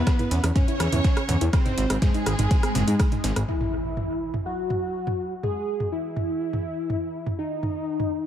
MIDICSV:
0, 0, Header, 1, 7, 480
1, 0, Start_track
1, 0, Tempo, 487805
1, 1507, Time_signature, 4, 2, 24, 8
1, 8134, End_track
2, 0, Start_track
2, 0, Title_t, "Violin section"
2, 0, Program_c, 0, 48
2, 0, Note_on_c, 0, 71, 109
2, 452, Note_off_c, 0, 71, 0
2, 547, Note_on_c, 0, 73, 110
2, 1413, Note_off_c, 0, 73, 0
2, 1507, Note_on_c, 0, 72, 94
2, 1949, Note_off_c, 0, 72, 0
2, 1987, Note_on_c, 0, 68, 117
2, 3333, Note_off_c, 0, 68, 0
2, 8134, End_track
3, 0, Start_track
3, 0, Title_t, "Analog synth lead"
3, 0, Program_c, 1, 81
3, 0, Note_on_c, 1, 59, 106
3, 452, Note_off_c, 1, 59, 0
3, 547, Note_on_c, 1, 61, 104
3, 1413, Note_off_c, 1, 61, 0
3, 1507, Note_on_c, 1, 60, 96
3, 1949, Note_off_c, 1, 60, 0
3, 1988, Note_on_c, 1, 56, 108
3, 3333, Note_off_c, 1, 56, 0
3, 3428, Note_on_c, 1, 64, 100
3, 4293, Note_off_c, 1, 64, 0
3, 4385, Note_on_c, 1, 66, 94
3, 5252, Note_off_c, 1, 66, 0
3, 5347, Note_on_c, 1, 68, 86
3, 5789, Note_off_c, 1, 68, 0
3, 5826, Note_on_c, 1, 64, 101
3, 7172, Note_off_c, 1, 64, 0
3, 7267, Note_on_c, 1, 63, 99
3, 8132, Note_off_c, 1, 63, 0
3, 8134, End_track
4, 0, Start_track
4, 0, Title_t, "Synth arpeggio sound"
4, 0, Program_c, 2, 84
4, 67, Note_on_c, 2, 68, 84
4, 122, Note_off_c, 2, 68, 0
4, 189, Note_on_c, 2, 64, 77
4, 277, Note_off_c, 2, 64, 0
4, 307, Note_on_c, 2, 61, 81
4, 398, Note_off_c, 2, 61, 0
4, 429, Note_on_c, 2, 61, 79
4, 517, Note_off_c, 2, 61, 0
4, 547, Note_on_c, 2, 61, 88
4, 638, Note_off_c, 2, 61, 0
4, 669, Note_on_c, 2, 64, 102
4, 757, Note_off_c, 2, 64, 0
4, 787, Note_on_c, 2, 68, 80
4, 842, Note_off_c, 2, 68, 0
4, 910, Note_on_c, 2, 64, 79
4, 998, Note_off_c, 2, 64, 0
4, 1028, Note_on_c, 2, 61, 78
4, 1119, Note_off_c, 2, 61, 0
4, 1150, Note_on_c, 2, 61, 76
4, 1238, Note_off_c, 2, 61, 0
4, 1268, Note_on_c, 2, 61, 76
4, 1359, Note_off_c, 2, 61, 0
4, 1390, Note_on_c, 2, 64, 102
4, 1478, Note_off_c, 2, 64, 0
4, 1508, Note_on_c, 2, 68, 86
4, 1562, Note_off_c, 2, 68, 0
4, 1630, Note_on_c, 2, 63, 78
4, 1718, Note_off_c, 2, 63, 0
4, 1748, Note_on_c, 2, 60, 77
4, 1839, Note_off_c, 2, 60, 0
4, 1870, Note_on_c, 2, 60, 81
4, 1958, Note_off_c, 2, 60, 0
4, 1988, Note_on_c, 2, 60, 88
4, 2079, Note_off_c, 2, 60, 0
4, 2109, Note_on_c, 2, 63, 102
4, 2197, Note_off_c, 2, 63, 0
4, 2228, Note_on_c, 2, 68, 79
4, 2282, Note_off_c, 2, 68, 0
4, 2350, Note_on_c, 2, 63, 79
4, 2437, Note_off_c, 2, 63, 0
4, 2467, Note_on_c, 2, 60, 90
4, 2558, Note_off_c, 2, 60, 0
4, 2589, Note_on_c, 2, 60, 76
4, 2677, Note_off_c, 2, 60, 0
4, 2708, Note_on_c, 2, 60, 83
4, 2799, Note_off_c, 2, 60, 0
4, 2829, Note_on_c, 2, 63, 104
4, 2917, Note_off_c, 2, 63, 0
4, 2948, Note_on_c, 2, 68, 82
4, 3002, Note_off_c, 2, 68, 0
4, 3070, Note_on_c, 2, 63, 77
4, 3158, Note_off_c, 2, 63, 0
4, 3187, Note_on_c, 2, 60, 81
4, 3278, Note_off_c, 2, 60, 0
4, 3310, Note_on_c, 2, 60, 79
4, 3398, Note_off_c, 2, 60, 0
4, 8134, End_track
5, 0, Start_track
5, 0, Title_t, "Analog synth bass"
5, 0, Program_c, 3, 38
5, 306, Note_on_c, 3, 40, 98
5, 385, Note_off_c, 3, 40, 0
5, 427, Note_on_c, 3, 40, 79
5, 504, Note_off_c, 3, 40, 0
5, 785, Note_on_c, 3, 40, 95
5, 865, Note_off_c, 3, 40, 0
5, 908, Note_on_c, 3, 40, 84
5, 984, Note_off_c, 3, 40, 0
5, 1266, Note_on_c, 3, 40, 104
5, 1345, Note_off_c, 3, 40, 0
5, 1388, Note_on_c, 3, 40, 84
5, 1464, Note_off_c, 3, 40, 0
5, 1746, Note_on_c, 3, 32, 95
5, 1825, Note_off_c, 3, 32, 0
5, 1869, Note_on_c, 3, 32, 87
5, 1945, Note_off_c, 3, 32, 0
5, 2227, Note_on_c, 3, 32, 100
5, 2305, Note_off_c, 3, 32, 0
5, 2349, Note_on_c, 3, 32, 79
5, 2425, Note_off_c, 3, 32, 0
5, 2707, Note_on_c, 3, 30, 95
5, 2785, Note_off_c, 3, 30, 0
5, 2829, Note_on_c, 3, 44, 82
5, 2905, Note_off_c, 3, 44, 0
5, 3186, Note_on_c, 3, 32, 105
5, 3265, Note_off_c, 3, 32, 0
5, 3309, Note_on_c, 3, 32, 88
5, 3385, Note_off_c, 3, 32, 0
5, 8134, End_track
6, 0, Start_track
6, 0, Title_t, "Impact"
6, 0, Program_c, 4, 103
6, 3427, Note_on_c, 4, 60, 68
6, 5347, Note_off_c, 4, 60, 0
6, 8134, End_track
7, 0, Start_track
7, 0, Title_t, "Drums"
7, 67, Note_on_c, 9, 36, 114
7, 67, Note_on_c, 9, 37, 55
7, 67, Note_on_c, 9, 38, 125
7, 67, Note_on_c, 9, 42, 55
7, 67, Note_on_c, 9, 51, 92
7, 165, Note_off_c, 9, 36, 0
7, 165, Note_off_c, 9, 37, 0
7, 165, Note_off_c, 9, 38, 0
7, 165, Note_off_c, 9, 42, 0
7, 165, Note_off_c, 9, 51, 0
7, 189, Note_on_c, 9, 42, 33
7, 189, Note_on_c, 9, 45, 94
7, 288, Note_off_c, 9, 42, 0
7, 288, Note_off_c, 9, 45, 0
7, 307, Note_on_c, 9, 46, 107
7, 307, Note_on_c, 9, 51, 70
7, 405, Note_off_c, 9, 51, 0
7, 406, Note_off_c, 9, 46, 0
7, 429, Note_on_c, 9, 37, 54
7, 429, Note_on_c, 9, 42, 66
7, 528, Note_off_c, 9, 37, 0
7, 528, Note_off_c, 9, 42, 0
7, 547, Note_on_c, 9, 36, 120
7, 547, Note_on_c, 9, 51, 85
7, 548, Note_on_c, 9, 42, 58
7, 548, Note_on_c, 9, 45, 97
7, 645, Note_off_c, 9, 51, 0
7, 646, Note_off_c, 9, 36, 0
7, 646, Note_off_c, 9, 42, 0
7, 646, Note_off_c, 9, 45, 0
7, 670, Note_on_c, 9, 42, 34
7, 769, Note_off_c, 9, 42, 0
7, 786, Note_on_c, 9, 38, 41
7, 786, Note_on_c, 9, 51, 72
7, 788, Note_on_c, 9, 37, 58
7, 788, Note_on_c, 9, 46, 105
7, 885, Note_off_c, 9, 38, 0
7, 885, Note_off_c, 9, 51, 0
7, 886, Note_off_c, 9, 37, 0
7, 886, Note_off_c, 9, 46, 0
7, 910, Note_on_c, 9, 42, 65
7, 910, Note_on_c, 9, 45, 96
7, 1008, Note_off_c, 9, 42, 0
7, 1008, Note_off_c, 9, 45, 0
7, 1027, Note_on_c, 9, 36, 119
7, 1027, Note_on_c, 9, 38, 121
7, 1027, Note_on_c, 9, 51, 89
7, 1028, Note_on_c, 9, 42, 53
7, 1125, Note_off_c, 9, 38, 0
7, 1125, Note_off_c, 9, 51, 0
7, 1126, Note_off_c, 9, 36, 0
7, 1126, Note_off_c, 9, 42, 0
7, 1149, Note_on_c, 9, 37, 57
7, 1149, Note_on_c, 9, 42, 36
7, 1149, Note_on_c, 9, 51, 50
7, 1247, Note_off_c, 9, 51, 0
7, 1248, Note_off_c, 9, 37, 0
7, 1248, Note_off_c, 9, 42, 0
7, 1267, Note_on_c, 9, 45, 100
7, 1267, Note_on_c, 9, 46, 99
7, 1267, Note_on_c, 9, 51, 73
7, 1365, Note_off_c, 9, 51, 0
7, 1366, Note_off_c, 9, 45, 0
7, 1366, Note_off_c, 9, 46, 0
7, 1389, Note_on_c, 9, 42, 69
7, 1488, Note_off_c, 9, 42, 0
7, 1506, Note_on_c, 9, 51, 90
7, 1507, Note_on_c, 9, 37, 58
7, 1507, Note_on_c, 9, 42, 62
7, 1508, Note_on_c, 9, 36, 127
7, 1605, Note_off_c, 9, 51, 0
7, 1606, Note_off_c, 9, 36, 0
7, 1606, Note_off_c, 9, 37, 0
7, 1606, Note_off_c, 9, 42, 0
7, 1629, Note_on_c, 9, 38, 48
7, 1630, Note_on_c, 9, 42, 33
7, 1630, Note_on_c, 9, 45, 94
7, 1728, Note_off_c, 9, 38, 0
7, 1728, Note_off_c, 9, 42, 0
7, 1728, Note_off_c, 9, 45, 0
7, 1747, Note_on_c, 9, 46, 102
7, 1747, Note_on_c, 9, 51, 73
7, 1846, Note_off_c, 9, 46, 0
7, 1846, Note_off_c, 9, 51, 0
7, 1870, Note_on_c, 9, 37, 48
7, 1870, Note_on_c, 9, 38, 39
7, 1870, Note_on_c, 9, 42, 66
7, 1968, Note_off_c, 9, 37, 0
7, 1968, Note_off_c, 9, 38, 0
7, 1968, Note_off_c, 9, 42, 0
7, 1987, Note_on_c, 9, 38, 121
7, 1987, Note_on_c, 9, 42, 57
7, 1987, Note_on_c, 9, 45, 97
7, 1987, Note_on_c, 9, 51, 89
7, 1988, Note_on_c, 9, 36, 114
7, 2086, Note_off_c, 9, 36, 0
7, 2086, Note_off_c, 9, 38, 0
7, 2086, Note_off_c, 9, 42, 0
7, 2086, Note_off_c, 9, 45, 0
7, 2086, Note_off_c, 9, 51, 0
7, 2110, Note_on_c, 9, 42, 33
7, 2208, Note_off_c, 9, 42, 0
7, 2227, Note_on_c, 9, 51, 74
7, 2228, Note_on_c, 9, 37, 51
7, 2228, Note_on_c, 9, 46, 112
7, 2325, Note_off_c, 9, 51, 0
7, 2326, Note_off_c, 9, 37, 0
7, 2326, Note_off_c, 9, 46, 0
7, 2350, Note_on_c, 9, 42, 68
7, 2350, Note_on_c, 9, 45, 100
7, 2449, Note_off_c, 9, 42, 0
7, 2449, Note_off_c, 9, 45, 0
7, 2467, Note_on_c, 9, 51, 86
7, 2468, Note_on_c, 9, 36, 122
7, 2468, Note_on_c, 9, 42, 60
7, 2566, Note_off_c, 9, 36, 0
7, 2566, Note_off_c, 9, 42, 0
7, 2566, Note_off_c, 9, 51, 0
7, 2590, Note_on_c, 9, 37, 57
7, 2590, Note_on_c, 9, 46, 61
7, 2688, Note_off_c, 9, 37, 0
7, 2688, Note_off_c, 9, 46, 0
7, 2707, Note_on_c, 9, 38, 115
7, 2707, Note_on_c, 9, 45, 102
7, 2707, Note_on_c, 9, 46, 101
7, 2707, Note_on_c, 9, 51, 83
7, 2805, Note_off_c, 9, 38, 0
7, 2805, Note_off_c, 9, 51, 0
7, 2806, Note_off_c, 9, 45, 0
7, 2806, Note_off_c, 9, 46, 0
7, 2830, Note_on_c, 9, 42, 68
7, 2928, Note_off_c, 9, 42, 0
7, 2947, Note_on_c, 9, 51, 81
7, 2948, Note_on_c, 9, 36, 124
7, 2948, Note_on_c, 9, 37, 52
7, 2948, Note_on_c, 9, 42, 58
7, 3045, Note_off_c, 9, 51, 0
7, 3046, Note_off_c, 9, 36, 0
7, 3046, Note_off_c, 9, 37, 0
7, 3046, Note_off_c, 9, 42, 0
7, 3069, Note_on_c, 9, 42, 35
7, 3069, Note_on_c, 9, 45, 98
7, 3168, Note_off_c, 9, 42, 0
7, 3168, Note_off_c, 9, 45, 0
7, 3187, Note_on_c, 9, 38, 111
7, 3187, Note_on_c, 9, 46, 106
7, 3187, Note_on_c, 9, 51, 83
7, 3285, Note_off_c, 9, 38, 0
7, 3285, Note_off_c, 9, 51, 0
7, 3286, Note_off_c, 9, 46, 0
7, 3309, Note_on_c, 9, 37, 51
7, 3309, Note_on_c, 9, 42, 69
7, 3408, Note_off_c, 9, 37, 0
7, 3408, Note_off_c, 9, 42, 0
7, 3549, Note_on_c, 9, 45, 79
7, 3647, Note_off_c, 9, 45, 0
7, 3906, Note_on_c, 9, 45, 84
7, 4005, Note_off_c, 9, 45, 0
7, 4269, Note_on_c, 9, 45, 84
7, 4367, Note_off_c, 9, 45, 0
7, 4627, Note_on_c, 9, 45, 86
7, 4725, Note_off_c, 9, 45, 0
7, 4989, Note_on_c, 9, 45, 89
7, 5087, Note_off_c, 9, 45, 0
7, 5347, Note_on_c, 9, 45, 82
7, 5445, Note_off_c, 9, 45, 0
7, 5709, Note_on_c, 9, 45, 76
7, 5807, Note_off_c, 9, 45, 0
7, 6066, Note_on_c, 9, 45, 81
7, 6165, Note_off_c, 9, 45, 0
7, 6429, Note_on_c, 9, 45, 84
7, 6527, Note_off_c, 9, 45, 0
7, 6787, Note_on_c, 9, 45, 79
7, 6886, Note_off_c, 9, 45, 0
7, 7149, Note_on_c, 9, 45, 81
7, 7247, Note_off_c, 9, 45, 0
7, 7507, Note_on_c, 9, 45, 77
7, 7605, Note_off_c, 9, 45, 0
7, 7869, Note_on_c, 9, 45, 76
7, 7967, Note_off_c, 9, 45, 0
7, 8134, End_track
0, 0, End_of_file